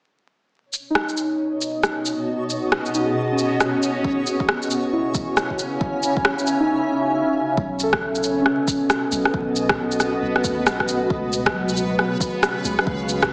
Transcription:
0.50 ambient pad B2, synth texture C#4 C#5
0.62 ambient pad B3
0.68 ambient pad D#5
0.73 shaker
0.90 synth keys D#4
0.95 ambient pad F#4, cross-stick
1.09 shaker
1.17 shaker
1.61 shaker
1.83 cross-stick, shaker
2.05 shaker
2.50 shaker
2.72 cross-stick
2.86 shaker
2.94 synth keys D#4, shaker
3.00 synth keys F#4
3.04 synth keys G#4
3.32 synth keys C#4
3.38 shaker
3.60 cross-stick, shaker
3.83 shaker
4.04 ambient pad C#3, kick
4.14 ambient pad C#4
4.21 ambient pad G#5
4.27 shaker
4.40 kick
4.49 cross-stick
4.62 shaker
4.71 shaker
4.92 synth keys E4
5.07 ambient pad E5
5.14 kick, shaker
5.37 cross-stick, shaker
5.50 kick
5.59 shaker
5.81 kick
6.03 shaker
6.17 kick
6.25 cross-stick
6.39 shaker
6.47 shaker
6.59 synth keys D#4
7.57 808-style bass B1, ambient pad B2, synth texture B3 B4, kick
7.72 ambient pad B3
7.80 synth keys A4, shaker
7.93 kick, cross-stick
8.09 ambient pad F#4
8.15 shaker
8.23 shaker
8.41 synth keys C#4, ambient pad D#5
8.46 cross-stick
8.68 kick, shaker
8.90 cross-stick, shaker
9.12 808-style bass B1, shaker
9.25 cross-stick
9.34 808-style bass B1, synth keys B3, kick
9.56 shaker
9.69 kick, cross-stick
9.92 shaker
10.00 cross-stick, shaker
10.22 808-style bass B1
10.36 cross-stick
10.43 808-style bass D#2, synth keys A3, kick, shaker
10.66 808-style bass B1, cross-stick, shaker
10.80 kick, cross-stick
10.88 shaker
11.10 808-style bass C#2, ambient pad C#3, kick
11.27 ambient pad C#4 G#4
11.33 shaker
11.46 ambient pad C#5, kick, cross-stick
11.52 synth keys F#3
11.69 shaker
11.77 shaker
11.99 cross-stick
12.21 kick, shaker
12.43 cross-stick, shaker
12.65 808-style bass C#2, shaker
12.79 cross-stick
12.87 808-style bass C#2, kick
13.09 shaker
13.22 kick, cross-stick

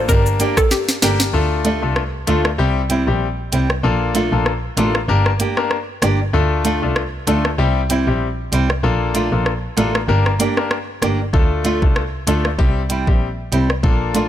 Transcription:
0.08 double bass G1, grand piano A#3 D4 G4 A#4, synth pluck A#4, kick, shaker
0.26 shaker
0.39 nylon-string guitar A#3 D4 G4, closed hi-hat, shaker
0.57 synth pluck A4, kick, cross-stick, shaker
0.71 synth pluck G4, snare, shaker
0.88 snare, shaker
1.02 double bass G1, grand piano A#3 D4 G4 A#4, nylon-string guitar A#3 D4 G4, snare, closed hi-hat, shaker
1.20 snare, shaker
1.33 double bass D2, grand piano A3 D4 F4 A4
1.64 nylon-string guitar A3 D4 F4, closed hi-hat
1.82 double bass C2, grand piano A3 D4 F4 A4
1.96 cross-stick
2.27 double bass D2, grand piano A3 D4 F4 A4, nylon-string guitar A3 D4 F4, closed hi-hat
2.45 cross-stick
2.58 double bass C2, grand piano G3 C4 E4 G4
2.89 nylon-string guitar G3 C4 E4, closed hi-hat
3.07 double bass A#1, grand piano G3 C4 E4 G4
3.52 double bass C2, nylon-string guitar G3 C4 E4, closed hi-hat
3.69 muted nylon-string guitar stroke, cross-stick
3.83 double bass A#1, grand piano A#3 D4 F4 A4
4.14 nylon-string guitar A3 D4 F4, closed hi-hat
4.32 double bass A#1, grand piano A#3 D4 F4 A4
4.46 cross-stick
4.77 double bass A1, nylon-string guitar A3 D4 F4, grand piano A#3 D4 F4 A4, closed hi-hat
4.95 cross-stick
5.08 double bass G1, grand piano A#3 D4 G4 A#4
5.26 cross-stick
5.39 nylon-string guitar A#3 D4 G4, closed hi-hat
5.57 grand piano A#3 D4 G4 A#4, cross-stick
5.71 cross-stick
6.02 double bass G1, nylon-string guitar A#3 D4 G4, cross-stick, closed hi-hat
6.33 double bass D2, grand piano A3 D4 F4 A4
6.64 nylon-string guitar A3 D4 F4, closed hi-hat
6.82 double bass C2, grand piano A3 D4 F4 A4
6.96 cross-stick
7.27 double bass D2, nylon-string guitar A3 D4 F4, grand piano A3 D4 F4 A4, closed hi-hat
7.45 cross-stick
7.58 double bass C2, grand piano G3 C4 E4 G4
7.89 nylon-string guitar G3 C4 E4, closed hi-hat
8.07 double bass A#1, grand piano G3 C4 E4 G4
8.52 double bass C2, nylon-string guitar G3 C4 E4, closed hi-hat
8.69 muted nylon-string guitar stroke, cross-stick
8.83 double bass A#1, grand piano A#3 D4 F4 A4
9.14 nylon-string guitar A3 D4 F4, closed hi-hat
9.32 double bass A#1, grand piano A#3 D4 F4 A4
9.46 cross-stick
9.77 double bass A1, nylon-string guitar A3 D4 F4, grand piano A#3 D4 F4 A4, closed hi-hat
9.95 cross-stick
10.08 double bass G1, grand piano A#3 D4 G4 A#4
10.26 cross-stick
10.39 nylon-string guitar A#3 D4 G4, closed hi-hat
10.57 grand piano A#3 D4 G4 A#4, cross-stick
10.71 cross-stick
11.02 double bass G1, nylon-string guitar A#3 D4 G4, cross-stick, closed hi-hat
11.33 double bass D2, grand piano A3 D4 F4 A4, kick
11.64 nylon-string guitar A3 D4 F4, closed hi-hat
11.82 double bass C2, grand piano A3 D4 F4 A4, kick
11.96 cross-stick
12.27 double bass D2, nylon-string guitar A3 D4 F4, grand piano A3 D4 F4 A4, closed hi-hat
12.45 cross-stick
12.58 double bass C2, grand piano G3 C4 E4 G4, kick
12.89 nylon-string guitar G3 C4 E4, closed hi-hat
13.07 double bass A#1, grand piano G3 C4 E4 G4, kick
13.52 double bass C2, nylon-string guitar G3 C4 E4, closed hi-hat
13.69 muted nylon-string guitar stroke, cross-stick
13.83 double bass A#1, grand piano A#3 D4 F4 A4, kick
14.14 nylon-string guitar A3 D4 F4, closed hi-hat

